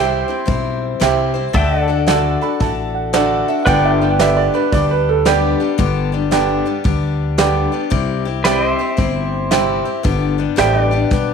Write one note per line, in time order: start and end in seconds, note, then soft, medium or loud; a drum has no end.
0.00 0.22 C2 medium
0.00 0.29 C3 medium
0.00 0.29 G3 medium
0.00 0.29 C4 medium
0.00 0.28 E4 medium
0.00 0.37 G4 medium
0.00 0.27 C5 medium
0.00 0.37 C5 medium
0.00 1.53 C5 medium
0.00 0.38 E5 medium
0.00 1.53 E5 medium
0.00 0.38 G5 medium
0.00 1.53 G5 medium
0.28 0.45 C4 soft
0.28 0.46 E4 medium
0.28 0.46 C5 medium
0.45 0.93 B1 medium
0.45 0.99 G3 medium
0.45 0.99 C4 medium
0.45 1.00 E4 medium
0.45 1.00 C5 medium
0.45 kick loud
0.45 open hi-hat medium
1.00 1.46 C2 medium
1.00 1.35 C3 medium
1.00 1.35 G3 medium
1.00 1.34 C4 medium
1.00 1.34 E4 medium
1.00 1.44 G4 medium
1.00 1.33 C5 loud
1.00 1.44 C5 medium
1.00 1.44 E5 medium
1.00 1.44 G5 medium
1.00 snare loud
1.34 1.54 C4 soft
1.34 1.54 E4 medium
1.34 1.53 C5 medium
1.53 2.34 D2 medium
1.53 1.88 D3 medium
1.53 1.89 A3 medium
1.53 1.89 D4 medium
1.53 1.88 F#4 medium
1.53 3.65 A4 medium
1.53 1.87 A4 loud
1.53 1.81 E5 medium
1.53 1.77 G5 medium
1.53 kick loud
1.53 open hi-hat medium
1.77 3.66 F#5 medium
1.81 3.65 D5 medium
1.88 2.06 D4 soft
1.88 2.07 F#4 medium
1.88 2.07 A4 medium
2.07 2.42 D3 medium
2.07 2.42 A3 medium
2.07 2.42 D4 loud
2.07 2.50 F#4 medium
2.07 2.41 F#4 medium
2.07 2.50 A4 medium
2.07 2.40 A4 medium
2.07 2.50 D5 medium
2.07 2.50 F#5 medium
2.07 snare loud
2.07 open hi-hat soft
2.41 2.60 D4 medium
2.41 2.61 F#4 medium
2.41 2.60 A4 soft
2.41 2.59 B5 medium
2.60 3.40 A1 medium
2.60 3.12 A3 medium
2.60 3.13 D4 medium
2.60 3.13 F#4 medium
2.60 3.13 A4 medium
2.60 2.93 A5 medium
2.60 kick loud
2.60 open hi-hat medium
2.95 3.12 F#5 medium
3.13 3.48 D3 medium
3.13 3.48 A3 medium
3.13 3.48 D4 medium
3.13 3.56 F#4 medium
3.13 3.48 F#4 medium
3.13 3.56 A4 medium
3.13 3.47 A4 loud
3.13 3.57 D5 medium
3.13 3.57 F#5 loud
3.13 snare loud
3.13 open hi-hat soft
3.48 3.67 D4 medium
3.48 3.67 F#4 medium
3.48 3.67 A4 medium
3.48 3.66 E5 medium
3.63 4.01 G2 loud
3.63 7.87 B4 medium
3.63 3.67 F#5 medium
3.67 4.47 G1 loud
3.67 4.02 D3 loud
3.67 4.01 G3 loud
3.67 4.01 B3 loud
3.67 4.00 D4 loud
3.67 4.00 G4 loud
3.67 7.88 D5 medium
3.67 3.88 F#5 medium
3.67 3.84 G5 loud
3.67 kick loud
3.67 open hi-hat soft
3.85 4.02 E5 medium
3.85 7.89 G5 medium
4.01 4.19 G3 soft
4.01 4.19 B3 medium
4.01 4.19 D4 medium
4.01 4.20 G4 medium
4.01 4.20 G5 medium
4.19 4.54 G2 medium
4.19 4.54 D3 medium
4.19 4.55 G3 medium
4.19 4.54 B3 medium
4.19 4.53 D4 medium
4.19 4.62 G4 medium
4.19 4.53 G4 loud
4.19 4.62 B4 medium
4.19 4.63 D5 medium
4.19 4.37 E5 loud
4.19 4.63 G5 medium
4.19 snare loud
4.19 open hi-hat soft
4.37 4.54 D5 medium
4.54 4.71 G3 soft
4.54 4.72 B3 soft
4.54 4.73 D4 medium
4.54 4.73 G4 medium
4.54 4.72 B4 loud
4.72 5.53 D2 medium
4.72 5.25 G3 medium
4.72 5.25 B3 medium
4.72 5.25 D4 medium
4.72 5.26 G4 medium
4.72 4.90 D5 medium
4.72 kick loud
4.72 open hi-hat medium
4.91 5.08 B4 medium
5.09 5.26 A4 medium
5.25 5.60 G2 medium
5.25 5.60 D3 medium
5.25 5.60 G3 medium
5.25 5.60 B3 medium
5.25 5.59 D4 loud
5.25 5.69 G4 medium
5.25 5.60 G4 loud
5.25 5.59 G4 medium
5.25 5.69 B4 medium
5.25 5.69 D5 medium
5.25 5.69 G5 loud
5.25 snare loud
5.25 open hi-hat medium
5.60 5.77 G3 medium
5.60 5.78 B3 medium
5.60 5.78 D4 medium
5.60 5.78 G4 medium
5.78 6.59 G1 loud
5.78 6.13 G2 medium
5.78 6.13 D3 medium
5.78 6.13 G3 medium
5.78 6.13 B3 loud
5.78 6.12 D4 medium
5.78 6.11 G4 loud
5.78 kick loud
5.78 open hi-hat medium
6.12 6.31 G3 soft
6.12 6.30 B3 medium
6.12 6.31 D4 medium
6.12 6.31 G4 medium
6.31 6.66 G2 medium
6.31 6.67 D3 medium
6.31 6.66 G3 medium
6.31 6.66 B3 medium
6.31 6.65 D4 medium
6.31 6.75 G4 medium
6.31 6.64 G4 loud
6.31 6.75 B4 medium
6.31 6.75 D5 medium
6.31 6.75 G5 medium
6.31 snare loud
6.31 open hi-hat medium
6.65 6.83 G3 medium
6.65 6.84 B3 soft
6.65 6.84 D4 medium
6.65 6.85 G4 medium
6.84 7.66 D2 medium
6.84 7.38 G3 medium
6.84 7.38 B3 medium
6.84 7.37 D4 medium
6.84 7.39 G4 medium
6.84 kick loud
6.84 open hi-hat medium
7.38 7.73 G2 medium
7.38 7.73 D3 medium
7.38 7.73 G3 medium
7.38 7.72 B3 medium
7.38 7.72 D4 medium
7.38 7.81 G4 medium
7.38 7.71 G4 medium
7.38 7.81 B4 medium
7.38 7.81 D5 medium
7.38 7.81 G5 medium
7.38 snare loud
7.38 open hi-hat medium
7.72 7.89 G3 soft
7.72 7.90 B3 soft
7.72 7.91 D4 medium
7.72 7.90 G4 soft
7.90 8.72 C2 loud
7.90 8.26 C3 medium
7.90 8.26 G3 medium
7.90 8.26 C4 medium
7.90 8.25 E4 medium
7.90 8.24 G4 medium
7.90 kick loud
7.90 open hi-hat soft
8.25 8.44 C4 soft
8.25 8.45 E4 soft
8.25 8.44 G4 medium
8.44 8.79 C3 medium
8.44 8.80 G3 medium
8.44 8.80 C4 medium
8.44 8.79 E4 medium
8.44 8.88 G4 medium
8.44 8.78 G4 medium
8.44 8.64 B4 medium
8.44 8.88 C5 medium
8.44 8.71 D5 medium
8.44 8.88 E5 medium
8.44 8.88 G5 medium
8.44 10.04 G5 medium
8.44 snare loud
8.44 open hi-hat soft
8.64 10.03 C5 medium
8.71 10.03 E5 medium
8.79 8.96 C4 soft
8.79 8.97 E4 medium
8.79 8.98 G4 medium
8.97 9.79 G1 medium
8.97 9.50 G3 medium
8.97 9.51 C4 medium
8.97 9.50 E4 medium
8.97 9.51 G4 medium
8.97 kick loud
8.97 open hi-hat soft
9.51 9.86 C3 medium
9.51 9.86 G3 medium
9.51 9.86 C4 loud
9.51 9.85 E4 loud
9.51 9.94 G4 medium
9.51 9.84 G4 loud
9.51 9.94 C5 medium
9.51 9.94 E5 medium
9.51 9.94 G5 loud
9.51 snare loud
9.85 10.04 C4 soft
9.85 10.04 E4 medium
9.85 10.03 G4 medium
10.03 10.45 G1 medium
10.03 10.39 G2 loud
10.03 10.39 D3 medium
10.03 10.39 G3 medium
10.03 10.38 B3 medium
10.03 10.37 D4 medium
10.03 10.37 G4 loud
10.03 kick loud
10.03 open hi-hat medium
10.38 10.56 G3 soft
10.38 10.56 B3 medium
10.38 10.56 D4 medium
10.38 10.56 G4 medium
10.56 11.03 A1 loud
10.56 10.92 G2 medium
10.56 10.92 D3 medium
10.56 10.92 G3 medium
10.56 10.92 B3 loud
10.56 10.91 D4 medium
10.56 10.90 G4 medium
10.56 11.00 G4 medium
10.56 11.01 B4 medium
10.56 10.78 C5 medium
10.56 11.01 D5 medium
10.56 10.84 E5 medium
10.56 11.01 G5 medium
10.56 snare loud
10.56 open hi-hat medium
10.61 11.34 G5 medium
10.78 11.34 B4 medium
10.84 11.34 D5 medium
10.91 11.10 G3 soft
10.91 11.10 B3 medium
10.91 11.11 D4 medium
10.91 11.10 G4 medium
11.11 11.34 B1 medium
11.11 11.34 G3 medium
11.11 11.34 B3 medium
11.11 11.34 D4 medium
11.11 11.34 G4 medium
11.11 kick loud
11.11 open hi-hat medium